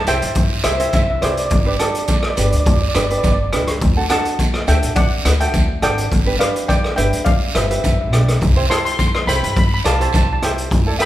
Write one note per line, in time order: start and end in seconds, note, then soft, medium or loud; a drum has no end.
0.07 0.19 C2 medium
0.07 0.43 E4 medium
0.07 0.42 G4 medium
0.07 0.43 C5 medium
0.07 0.61 E5 medium
0.07 0.67 G5 loud
0.07 closed hi-hat medium
0.07 short guiro medium
0.22 0.56 G2 medium
0.22 closed hi-hat medium
0.35 kick loud
0.35 closed hi-hat medium
0.35 long guiro medium
0.64 0.88 C2 medium
0.64 0.74 E4 medium
0.64 0.74 G4 medium
0.64 0.72 C5 medium
0.64 0.74 C5 medium
0.64 0.72 E5 medium
0.64 cross-stick medium
0.64 closed hi-hat medium
0.64 short guiro medium
0.73 0.79 E5 medium
0.79 1.06 E4 medium
0.79 1.06 G4 medium
0.79 1.06 C5 medium
0.79 0.88 E5 medium
0.79 closed hi-hat medium
0.89 0.94 E5 medium
0.89 closed hi-hat medium
0.93 1.16 C2 medium
0.93 1.02 E5 medium
0.93 kick medium
0.93 short guiro medium
1.03 1.09 E5 medium
1.10 1.18 E5 medium
1.21 1.45 C2 medium
1.21 1.49 E4 medium
1.21 1.49 G4 soft
1.21 1.29 B4 medium
1.21 1.49 C5 medium
1.21 1.30 D5 medium
1.21 cross-stick medium
1.21 closed hi-hat medium
1.31 1.38 D5 medium
1.37 1.44 D5 medium
1.37 closed hi-hat medium
1.45 1.52 D5 medium
1.50 1.74 G1 loud
1.50 1.60 D5 medium
1.50 kick loud
1.50 closed hi-hat medium
1.50 long guiro medium
1.61 1.67 D5 medium
1.65 1.74 D4 medium
1.65 1.74 G4 medium
1.65 1.74 B4 medium
1.65 1.75 D5 medium
1.76 2.15 D4 medium
1.76 2.15 A4 medium
1.76 1.82 D5 soft
1.76 cross-stick medium
1.76 closed hi-hat medium
1.81 2.15 G4 medium
1.81 1.89 D5 medium
1.90 1.97 D5 soft
1.95 closed hi-hat medium
1.99 2.05 D5 medium
2.06 2.11 D5 soft
2.06 kick medium
2.06 closed hi-hat medium
2.06 short guiro medium
2.12 2.19 D5 medium
2.20 2.27 D5 medium
2.20 cross-stick medium
2.30 2.35 D5 medium
2.36 2.50 G1 loud
2.36 2.73 D4 medium
2.36 2.73 G4 medium
2.36 2.73 B4 medium
2.36 2.42 D5 soft
2.36 closed hi-hat medium
2.36 short guiro medium
2.43 2.50 D5 medium
2.51 2.86 D2 medium
2.51 2.58 D5 medium
2.51 closed hi-hat medium
2.60 2.64 D5 medium
2.66 2.72 D5 medium
2.66 kick loud
2.66 closed hi-hat medium
2.66 long guiro medium
2.73 2.80 D5 medium
2.82 2.88 D5 soft
2.89 2.95 D5 medium
2.94 3.18 G1 loud
2.94 3.04 D4 medium
2.94 3.05 G4 medium
2.94 3.05 B4 medium
2.94 3.03 D5 medium
2.94 cross-stick medium
2.94 closed hi-hat medium
2.94 short guiro medium
3.04 3.11 D5 medium
3.10 3.36 D4 medium
3.10 3.36 G4 medium
3.10 3.36 B4 medium
3.10 3.17 D5 medium
3.10 closed hi-hat medium
3.18 3.24 D5 medium
3.23 3.54 G1 medium
3.23 3.31 D5 medium
3.23 kick medium
3.23 closed hi-hat medium
3.23 short guiro medium
3.32 3.40 D5 medium
3.53 3.75 C#2 medium
3.53 3.79 D4 medium
3.53 3.79 G4 medium
3.53 3.79 B4 medium
3.53 cross-stick medium
3.53 closed hi-hat medium
3.67 cross-stick medium
3.67 closed hi-hat medium
3.80 4.04 D2 loud
3.80 kick loud
3.80 closed hi-hat medium
3.80 long guiro medium
3.97 4.05 D4 medium
3.97 4.05 F#4 medium
3.97 4.05 A4 medium
4.10 4.45 D4 medium
4.10 4.45 F#4 medium
4.10 4.45 A4 medium
4.10 4.64 F#5 medium
4.10 4.70 A5 loud
4.10 cross-stick medium
4.10 closed hi-hat medium
4.25 closed hi-hat medium
4.39 kick medium
4.39 closed hi-hat medium
4.39 short guiro medium
4.54 cross-stick medium
4.67 4.80 D2 loud
4.67 5.03 D4 medium
4.67 5.03 F#4 medium
4.67 5.03 A4 medium
4.67 4.95 E5 medium
4.67 4.98 G5 loud
4.67 closed hi-hat medium
4.67 short guiro medium
4.82 5.16 A1 medium
4.82 closed hi-hat medium
4.96 5.37 D5 medium
4.96 5.37 F#5 medium
4.96 kick loud
4.96 closed hi-hat medium
4.96 long guiro medium
5.25 5.48 D2 loud
5.25 5.34 D4 medium
5.25 5.34 F#4 medium
5.25 5.35 B4 medium
5.25 cross-stick loud
5.25 closed hi-hat medium
5.25 short guiro medium
5.40 5.66 D4 medium
5.40 5.66 F#4 medium
5.40 5.66 A4 medium
5.40 5.80 E5 medium
5.40 5.82 G5 loud
5.40 closed hi-hat medium
5.54 5.84 D2 loud
5.54 kick loud
5.54 closed hi-hat medium
5.54 short guiro medium
5.82 6.05 G#1 medium
5.82 6.09 D4 medium
5.82 6.09 F#4 medium
5.82 6.09 A4 medium
5.82 6.36 D5 medium
5.82 6.42 G5 loud
5.82 cross-stick medium
5.82 closed hi-hat medium
5.98 closed hi-hat medium
6.11 6.34 G1 loud
6.11 kick loud
6.11 closed hi-hat medium
6.11 long guiro medium
6.26 6.35 D4 medium
6.26 6.35 G4 medium
6.26 6.35 B4 medium
6.39 6.75 D4 medium
6.39 6.75 G4 medium
6.39 6.75 B4 medium
6.39 6.67 D5 medium
6.39 6.69 F5 medium
6.39 cross-stick medium
6.39 closed hi-hat medium
6.56 closed hi-hat medium
6.68 6.96 D5 medium
6.68 6.95 G5 medium
6.68 kick medium
6.68 closed hi-hat medium
6.68 short guiro medium
6.84 cross-stick medium
6.96 7.10 G1 loud
6.96 7.33 D4 medium
6.96 7.33 G4 medium
6.96 7.33 B4 medium
6.96 7.24 E5 medium
6.96 7.24 G5 loud
6.96 closed hi-hat medium
7.13 7.46 D2 medium
7.13 closed hi-hat medium
7.25 7.52 D5 medium
7.25 7.55 F5 medium
7.25 kick loud
7.25 closed hi-hat medium
7.25 long guiro medium
7.55 7.78 G1 loud
7.55 7.64 D4 medium
7.55 7.64 G4 medium
7.55 7.65 B4 medium
7.55 7.63 C5 medium
7.55 7.62 E5 medium
7.55 cross-stick medium
7.55 closed hi-hat medium
7.55 short guiro medium
7.63 7.70 E5 medium
7.70 7.96 D4 medium
7.70 7.96 G4 medium
7.70 7.96 B4 medium
7.70 7.77 E5 medium
7.70 closed hi-hat medium
7.78 7.85 E5 medium
7.84 8.12 G1 loud
7.84 7.91 E5 medium
7.84 kick medium
7.84 closed hi-hat medium
7.84 short guiro medium
7.92 8.00 E5 medium
8.01 8.07 E5 medium
8.12 8.35 B1 medium
8.12 8.39 D4 medium
8.12 8.39 G4 soft
8.12 8.39 D5 medium
8.12 cross-stick medium
8.12 closed hi-hat medium
8.28 cross-stick medium
8.28 closed hi-hat medium
8.41 8.64 C2 loud
8.41 kick loud
8.41 closed hi-hat soft
8.41 long guiro medium
8.56 8.65 E4 medium
8.56 8.65 G4 medium
8.56 8.65 C5 medium
8.69 9.05 E4 medium
8.69 9.05 G4 medium
8.69 9.05 C5 medium
8.69 8.78 A5 medium
8.69 8.76 C6 loud
8.69 cross-stick medium
8.69 closed hi-hat medium
8.77 8.84 C6 medium
8.85 8.91 C6 medium
8.85 closed hi-hat medium
8.92 8.98 C6 medium
8.99 9.07 C6 medium
8.99 kick medium
8.99 closed hi-hat medium
8.99 short guiro medium
9.08 9.14 C6 medium
9.15 9.23 C6 medium
9.15 cross-stick medium
9.27 9.39 C2 loud
9.27 9.63 E4 medium
9.27 9.63 G4 medium
9.27 9.63 C5 medium
9.27 9.35 G5 medium
9.27 9.35 B5 loud
9.27 closed hi-hat medium
9.27 short guiro medium
9.36 9.43 B5 medium
9.43 9.76 G2 medium
9.43 9.51 B5 medium
9.43 closed hi-hat medium
9.52 9.58 B5 medium
9.52 long guiro medium
9.57 9.66 B5 medium
9.57 kick loud
9.57 closed hi-hat medium
9.67 9.73 B5 medium
9.74 9.81 B5 medium
9.84 10.08 C2 medium
9.84 9.94 E4 medium
9.84 9.94 G4 medium
9.84 9.94 D5 medium
9.84 9.93 F5 medium
9.84 9.93 A5 medium
9.84 cross-stick medium
9.84 closed hi-hat medium
9.84 short guiro medium
9.96 10.01 A5 medium
10.00 10.26 E4 medium
10.00 10.26 G4 medium
10.00 10.26 C5 medium
10.00 10.07 A5 medium
10.00 closed hi-hat medium
10.09 10.15 A5 medium
10.13 10.36 C2 medium
10.13 10.22 A5 medium
10.13 kick medium
10.13 closed hi-hat medium
10.13 short guiro medium
10.23 10.30 A5 medium
10.33 10.38 A5 medium
10.42 10.65 C2 medium
10.42 10.68 E4 medium
10.42 10.69 G4 medium
10.42 10.68 C5 medium
10.42 10.70 E5 medium
10.42 10.70 G5 medium
10.42 cross-stick medium
10.42 closed hi-hat medium
10.58 closed hi-hat medium
10.71 10.94 D2 loud
10.71 kick loud
10.71 closed hi-hat medium
10.71 long guiro medium
10.87 10.95 E4 medium
10.87 10.95 A4 medium
10.87 10.95 D5 medium
10.99 11.05 E4 medium
10.99 11.05 A4 medium
10.99 11.05 E5 medium
10.99 11.05 G5 medium
10.99 11.05 B5 loud
10.99 cross-stick medium
10.99 closed hi-hat medium